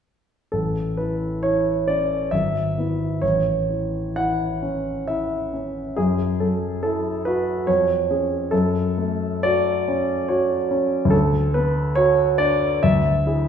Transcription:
grand piano
0.52 A1 A4
0.97 E3 B4
1.43 E4 C#5
1.88 C#4 D5
2.31 G#1 E5
2.78 B3 E4
3.22 A1 C#5
3.69 E3
4.16 E4 F#5
4.62 C#4
5.08 E4 E5
5.53 C#4
5.96 F#2 G#4
6.40 F#3 A4
6.83 E4 A4
7.25 F#4 B4
7.67 F2 C#5
8.11 C#4 G#4
8.51 F#2 A4
8.98 A3
9.43 F#4 D5
9.88 C#4
10.28 F#4 C#5
10.71 C#4
11.05 D2
11.10 A4
11.54 B3 B4
11.95 F#4 C#5
12.38 D4 D5
12.83 D2 E5
13.26 E4 G#4

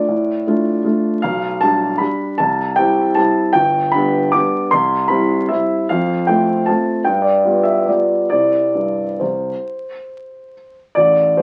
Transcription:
grand piano
Already playing: D5
0.09 A2
0.47 A3 D4 F4
0.84 A3 D4 F4
1.22 B1 F5
1.61 G3 D4 G4 A5
1.98 G3 D4 G4 B5
2.38 C2 A5
2.76 G3 C4 E4 G5
3.15 G3 C4 E4 A5
3.53 G1 G5
3.92 G3 B3 D4 B5
4.32 G3 B3 D4 D6
4.71 C2 C6
5.08 G3 C4 E4 B5
5.49 G3 C4 E4 E5
5.89 F2 F5
6.27 A3 C4 F4 G5
6.66 A3 C4 F4 A5
7.04 G2 G5
7.22 D5
7.44 G3 B3 F4
7.63 E5
7.86 G3 B3 F4 D5
8.30 C3 C4 E4 D5
8.75 G2
9.20 C2 C5
10.95 A1 D5
11.37 A3 C5

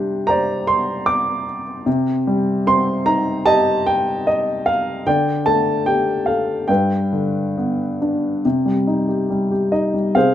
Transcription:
upright piano
Already playing: C3 G3 D4 G4 G5 C6
0.27 C5 D5 A#5
0.67 C6
1.06 D6
1.86 C3
2.27 G3
2.67 C4 C6
3.06 D#4 A#5
3.46 G4 D#5 A5
3.86 G5
4.27 D#5
4.66 F5
5.07 D3 D5 G5
5.46 A3 A5
5.86 G4 G5
6.26 A4 F5
6.68 G2 B4 G5
7.12 D3
7.57 B3
8.02 D4
8.45 C3
8.66 G3
8.87 D#4
9.09 G4
9.30 G3
9.51 G4
9.72 D#4 D#5
9.94 G3
10.15 C3 G#4 C5 F5

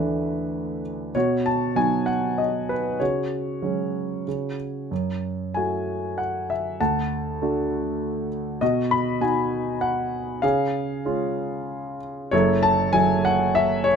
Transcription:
grand piano
Already playing: D2 E3 A3 D4 E4 B4
1.15 B2 F#4 C#5
1.46 A5
1.75 F#3 B3 D#4 G#5
2.06 F#5
2.38 D#5
2.69 B4
3.00 C#3 F#4 C#5
3.62 F#3 G#3 C#4
4.28 C#3
4.91 F#2
5.54 A3 E4 F#4 G#5
6.18 F#5
6.50 E5
6.80 D2 F#5 A5
7.42 A3 D4 F#4
8.61 B2 F#4 D#5
8.91 B5
9.21 B3 D#4 F#4 G#5
9.81 F#5
10.42 C#3 G#4 F5
11.05 G#3 C#4 F4
12.31 F#1 F#2 E4 A4 C#5
12.63 A5
12.93 F#3 A3 E4 G#5
13.25 F#5
13.55 E5
13.84 C#5

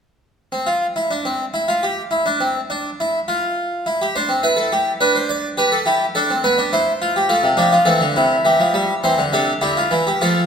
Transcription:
harpsichord
0.52 C4
0.67 F4
0.96 E4
1.11 D4
1.25 C4
1.54 E4
1.68 F4
1.83 G4
2.11 E4
2.26 D4
2.40 C4
2.70 D4
3.00 E4
3.28 F4
3.86 E4
4.02 G4
4.16 D4 C5
4.29 C4
4.43 E4 B4
4.57 A4
4.72 G4
5.01 D4 B4
5.16 C5
5.29 D5
5.57 G4 B4
5.72 A4
5.86 E4 G4
6.15 D4 A4
6.30 C4
6.44 B3 B4
6.58 D4
6.73 E4 C5
7.02 F4
7.16 G4
7.29 F4 A4
7.43 C3
7.57 F3 D4 G4
7.72 F4
7.85 E3 C4 A4
8.01 D3
8.16 C3 E4
8.45 E3 G4
8.60 F3
8.74 G3
9.04 E3 C4 C5
9.18 D3
9.33 C3 D4 A4
9.61 D3 E4 G4
9.77 F4
9.91 E3 E4
10.07 G4
10.21 F3 F4 A4

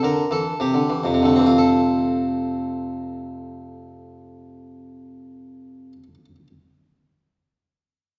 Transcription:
harpsichord
0.03 D3 A#4
0.31 E3 A4
0.60 C3 G4
0.74 D3
0.90 E3
1.04 F2 C3
1.14 C3
1.22 D3 A3
1.36 E3 C4
1.46 F4
1.58 A4

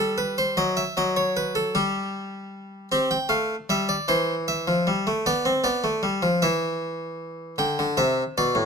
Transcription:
harpsichord
Already playing: G3
0.00 A4
0.18 B4
0.38 C5
0.57 F#3 D#5
0.77 E5
0.97 F#3 D#5
1.17 C#5
1.37 B4
1.55 A4
1.75 G3 G4
2.92 C4 G4
3.11 G5
3.29 A3 F5
3.69 G3 E5
3.89 D5
4.08 E3 C5
4.48 E5
4.68 F3
4.87 G3
5.07 A3
5.26 B3 D5
5.45 C4
5.64 B3 D5
5.84 A3
6.03 G3
6.22 F3
6.42 E3 E5
7.58 D3 G5
7.79 D3
7.97 C3 E5
8.38 B2 D5
8.55 A2

